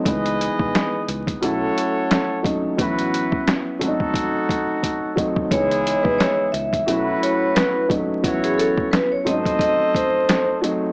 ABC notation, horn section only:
X:1
M:4/4
L:1/8
Q:"Swing 16ths" 1/4=88
K:C#m
V:1 name="Horn section"
[GBd]3 z [FAc]3 z | [EFB]2 z [DFA]4 z | [G,EG]3 z [EFB]3 z | [EFc]2 z [A^Bd]4 z |]